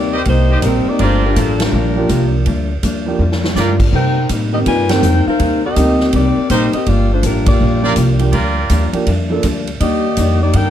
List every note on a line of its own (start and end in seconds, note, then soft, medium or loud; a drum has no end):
0.00 0.25 D#2 medium
0.00 0.15 C3 medium
0.00 0.15 G3 medium
0.00 0.15 A#3 medium
0.00 0.25 C4 medium
0.00 0.16 D#4 medium
0.00 0.25 G4 medium
0.00 0.24 A#4 medium
0.00 0.24 D5 medium
0.12 0.22 G4 medium
0.12 0.22 A#4 medium
0.12 0.22 C5 medium
0.12 0.21 D#5 medium
0.25 0.62 C2 medium
0.25 0.51 C3 soft
0.25 0.51 G3 soft
0.25 0.52 A#3 medium
0.25 0.62 A#3 medium
0.25 0.52 D#4 soft
0.25 0.62 D#4 medium
0.25 0.62 G4 medium
0.25 0.62 C5 medium
0.25 kick soft
0.25 ride medium
0.49 0.59 G4 medium
0.49 0.58 A#4 medium
0.49 0.59 C5 medium
0.49 0.59 D#5 medium
0.61 0.84 A#1 medium
0.61 0.88 C3 medium
0.61 0.99 G3 soft
0.61 0.88 G3 medium
0.61 0.88 A#3 medium
0.61 0.99 C4 soft
0.61 1.00 D#4 soft
0.61 0.89 D#4 medium
0.61 1.00 A#4 soft
0.61 kick soft
0.61 hi-hat pedal soft
0.61 ride medium
0.65 0.88 G3 medium
0.65 0.88 C4 medium
0.65 0.88 D#4 medium
0.65 0.88 A#4 medium
0.86 1.01 A#3 medium
0.86 1.01 D#4 medium
0.86 1.01 G4 medium
0.86 1.01 D5 medium
0.86 muted upright bass stroke soft
0.99 1.35 G1 medium
0.99 1.24 G2 soft
0.99 1.25 F3 soft
0.99 1.25 A#3 soft
0.99 1.26 D4 soft
0.99 1.55 F4 medium
0.99 1.55 G4 medium
0.99 1.55 A#4 medium
0.99 1.55 D5 medium
0.99 kick soft
0.99 ride soft
1.04 1.25 A3 medium
1.04 1.25 D4 medium
1.04 1.25 F4 medium
1.04 1.25 C5 medium
1.26 1.37 G3 medium
1.26 1.37 D4 medium
1.26 1.37 F4 medium
1.26 1.37 A#4 medium
1.36 1.72 A1 medium
1.36 1.61 G2 medium
1.36 1.61 F3 medium
1.36 1.62 F3 medium
1.36 1.62 A#3 medium
1.36 1.61 A#3 medium
1.36 1.62 D4 medium
1.36 1.62 A4 medium
1.36 kick soft
1.36 hi-hat pedal medium
1.36 ride medium
1.60 2.35 G3 medium
1.60 2.35 F4 medium
1.60 2.35 A#4 medium
1.60 snare medium
1.60 ride medium
1.64 2.35 D4 medium
1.72 2.08 A#1 medium
1.72 1.97 G2 soft
1.72 1.98 F3 medium
1.72 1.98 A#3 soft
1.72 1.99 D4 medium
1.96 2.43 F3 medium
1.96 2.44 A#3 soft
1.96 2.44 D4 soft
1.96 2.44 G4 medium
2.08 2.45 C2 medium
2.08 2.34 G2 medium
2.08 2.34 F3 medium
2.08 2.35 A#3 medium
2.08 2.35 D4 medium
2.08 kick soft
2.08 hi-hat pedal soft
2.08 ride medium
2.46 2.82 D2 medium
2.46 2.71 G2 medium
2.46 2.72 F3 medium
2.46 2.72 A#3 soft
2.46 2.72 D4 medium
2.46 kick soft
2.46 ride soft
2.83 3.18 D#2 medium
2.83 3.08 G2 medium
2.83 3.09 F3 medium
2.83 3.09 A#3 medium
2.83 3.09 D4 medium
2.83 kick soft
2.83 hi-hat pedal medium
2.83 ride medium
3.06 3.18 F3 medium
3.06 3.19 A#3 soft
3.06 3.19 D4 medium
3.06 3.19 G4 medium
3.19 3.55 F2 medium
3.19 3.45 G2 soft
3.19 3.45 F3 medium
3.19 3.46 A#3 medium
3.19 3.46 D4 medium
3.32 snare soft
3.44 snare medium
3.56 3.81 G2 medium
3.56 3.92 G2 medium
3.56 3.81 F3 medium
3.56 3.78 F3 soft
3.56 3.81 A#3 medium
3.56 3.78 A#3 soft
3.56 3.82 D4 medium
3.56 3.78 D4 soft
3.56 3.72 F4 medium
3.56 3.79 F4 soft
3.56 3.72 G4 medium
3.56 3.72 A#4 medium
3.56 3.72 D5 medium
3.56 snare medium
3.56 hi-hat pedal medium
3.80 kick medium
3.80 crash medium
3.92 4.18 C3 soft
3.92 4.28 C3 medium
3.92 4.18 G3 soft
3.92 4.19 A#3 soft
3.92 4.28 D#4 medium
3.92 4.19 D#4 soft
3.92 4.28 A#4 medium
3.92 4.28 C5 medium
3.92 4.28 G5 medium
3.92 kick soft
4.29 4.65 A2 medium
4.29 4.55 C3 medium
4.29 4.55 G3 medium
4.29 4.55 A#3 medium
4.29 4.55 D#4 medium
4.29 kick soft
4.29 hi-hat pedal medium
4.29 ride medium
4.53 4.65 D#3 medium
4.53 4.65 A#3 medium
4.53 4.60 C4 medium
4.53 4.66 C4 medium
4.53 4.59 G4 medium
4.53 4.66 G4 medium
4.53 4.60 A#4 medium
4.53 4.60 D#5 medium
4.66 5.02 G2 medium
4.66 4.91 C3 soft
4.66 4.92 G3 soft
4.66 4.92 A#3 medium
4.66 4.92 D#4 soft
4.66 4.89 F4 medium
4.66 4.89 B4 medium
4.66 4.89 D5 medium
4.66 4.89 G#5 loud
4.66 kick soft
4.66 ride medium
4.89 5.02 D#3 medium
4.89 5.02 A#3 medium
4.89 5.03 C4 medium
4.89 5.27 D#4 medium
4.89 5.03 G4 medium
4.89 5.27 A#4 medium
4.89 5.27 C5 medium
4.89 5.27 G5 loud
4.89 snare medium
4.89 ride medium
5.03 5.25 F2 medium
5.03 5.28 C3 medium
5.03 5.29 G3 medium
5.03 5.29 A#3 medium
5.03 5.29 D#4 medium
5.03 hi-hat pedal medium
5.27 5.62 D#4 medium
5.27 5.62 A#4 medium
5.27 5.62 C5 medium
5.27 5.62 F5 loud
5.27 muted upright bass stroke soft
5.39 5.76 D#2 medium
5.39 5.65 C3 soft
5.39 5.65 G3 soft
5.39 5.66 A#3 soft
5.39 5.66 D#4 soft
5.39 kick soft
5.39 ride medium
5.65 6.11 C4 medium
5.65 6.11 G4 medium
5.65 6.11 A#4 medium
5.65 6.11 D#5 loud
5.76 6.12 D2 medium
5.76 6.01 C3 medium
5.76 6.02 G3 medium
5.76 6.33 A#3 medium
5.76 6.02 A#3 medium
5.76 6.33 C4 medium
5.76 6.32 D#4 medium
5.76 6.02 D#4 medium
5.76 6.33 G4 medium
5.76 kick soft
5.76 hi-hat pedal medium
5.76 ride medium
6.00 snare soft
6.13 6.35 C2 medium
6.13 6.39 C3 soft
6.13 6.39 G3 medium
6.13 6.39 A#3 soft
6.13 6.52 C4 medium
6.13 6.40 D#4 medium
6.13 6.49 G4 medium
6.13 6.52 A#4 medium
6.13 6.52 D5 medium
6.13 kick soft
6.13 ride medium
6.37 muted upright bass stroke soft
6.50 6.72 A#1 medium
6.50 6.75 C3 medium
6.50 6.76 G3 medium
6.50 6.73 A#3 medium
6.50 6.76 A#3 medium
6.50 6.66 D#4 medium
6.50 6.73 D#4 medium
6.50 6.76 D#4 medium
6.50 6.66 G4 medium
6.50 6.72 G4 medium
6.50 6.66 A#4 medium
6.50 6.66 C5 medium
6.50 6.72 C5 medium
6.50 kick soft
6.50 hi-hat pedal medium
6.50 ride medium
6.73 6.87 C4 medium
6.73 6.86 G4 medium
6.73 6.87 A#4 medium
6.73 6.86 D#5 medium
6.73 muted upright bass stroke soft
6.73 ride soft
6.86 7.22 G1 medium
6.86 7.12 G2 soft
6.86 7.12 F3 soft
6.86 7.11 A#3 medium
6.86 7.12 A#3 soft
6.86 7.13 D4 soft
6.86 7.11 F4 medium
6.86 7.11 G4 medium
6.86 7.11 D5 medium
6.86 kick soft
6.86 ride medium
7.13 7.24 A3 medium
7.13 7.24 D4 medium
7.13 7.24 F4 medium
7.13 7.24 C5 medium
7.22 7.59 A1 medium
7.22 7.48 G2 medium
7.22 7.48 F3 medium
7.22 7.47 G3 medium
7.22 7.49 A#3 medium
7.22 7.49 D4 medium
7.22 7.47 D4 medium
7.22 7.47 F4 medium
7.22 7.47 A#4 medium
7.22 kick soft
7.22 hi-hat pedal medium
7.22 ride medium
7.46 8.18 A#3 medium
7.46 8.18 F4 medium
7.46 8.18 G4 medium
7.46 8.18 D5 medium
7.46 kick medium
7.46 ride medium
7.60 7.95 A#1 medium
7.60 7.85 G2 soft
7.60 7.86 F3 soft
7.60 7.86 A#3 soft
7.60 7.86 D4 soft
7.82 7.95 F3 medium
7.82 7.95 A#3 medium
7.82 7.96 D4 medium
7.82 7.92 F4 medium
7.82 7.92 G4 medium
7.82 7.96 G4 medium
7.82 7.92 A#4 medium
7.82 7.92 D5 medium
7.96 8.32 C2 medium
7.96 8.22 G2 medium
7.96 8.22 F3 medium
7.96 8.23 A#3 medium
7.96 8.23 D4 medium
7.96 kick soft
7.96 hi-hat pedal medium
7.96 ride medium
8.19 8.32 F3 medium
8.19 8.32 A#3 soft
8.19 8.32 D4 medium
8.19 8.33 G4 medium
8.19 ride soft
8.32 8.69 D2 medium
8.32 8.59 G2 medium
8.32 8.59 F3 soft
8.32 8.60 A#3 medium
8.32 8.89 F4 medium
8.32 8.89 G4 medium
8.32 8.89 A#4 medium
8.32 8.89 D5 medium
8.32 kick soft
8.32 ride medium
8.36 8.60 D4 medium
8.70 8.92 D#2 medium
8.70 8.96 G2 medium
8.70 8.96 F3 medium
8.70 8.96 A#3 medium
8.70 8.96 D4 medium
8.70 kick soft
8.70 hi-hat pedal medium
8.70 ride medium
8.93 9.06 F3 medium
8.93 9.06 A#3 medium
8.93 9.06 D4 medium
8.93 9.06 G4 medium
8.93 muted upright bass stroke soft
8.93 ride soft
9.07 9.43 F2 medium
9.07 9.32 G2 soft
9.07 9.33 F3 soft
9.07 9.33 A#3 medium
9.07 9.33 D4 medium
9.07 kick soft
9.07 ride medium
9.30 9.42 F3 medium
9.30 9.43 A#3 soft
9.30 9.43 D4 medium
9.30 9.43 A4 medium
9.43 9.80 D2 medium
9.43 9.69 G2 medium
9.43 9.69 F3 medium
9.43 9.69 A#3 medium
9.43 9.70 D4 medium
9.43 kick soft
9.43 hi-hat pedal soft
9.43 ride medium
9.67 ride soft
9.80 10.16 D#2 medium
9.80 10.06 D#3 soft
9.80 10.07 G3 soft
9.80 10.38 A#3 medium
9.80 10.07 A#3 soft
9.80 10.07 D4 soft
9.80 10.37 G4 medium
9.80 10.38 D5 medium
9.80 10.38 D#5 medium
9.80 kick soft
9.80 ride medium
10.17 10.53 F2 medium
10.17 10.43 D#3 medium
10.17 10.43 G3 medium
10.17 10.44 A#3 medium
10.17 10.44 D4 medium
10.17 kick soft
10.17 hi-hat pedal medium
10.17 ride medium
10.42 10.54 A#3 medium
10.42 10.54 D#4 medium
10.42 10.54 G4 medium
10.42 10.54 D5 medium
10.53 10.70 G2 medium
10.53 10.70 D#3 soft
10.53 10.70 G3 soft
10.53 10.70 A#3 soft
10.53 10.70 D4 soft
10.53 10.70 D#4 medium
10.53 10.70 A#4 medium
10.53 10.70 D5 medium
10.53 10.70 G5 loud
10.53 kick soft
10.53 ride medium